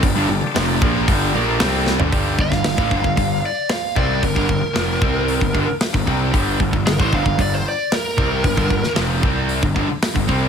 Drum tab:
HH |o---o---o---o---|o---o---o---o---|o---o---o---o---|o---o---o---o---|
SD |----o-------o-o-|---oo-------o---|----o-------o---|----o-------o---|
FT |---------------o|----------------|----------------|----------------|
BD |o-----o-o-------|o-oo-oooo-----o-|ooo---o--oo--oo-|o-oo-oooo-----o-|

HH |o---o---o---o---|
SD |---oo-------o---|
FT |----------------|
BD |ooo---o--oo--oo-|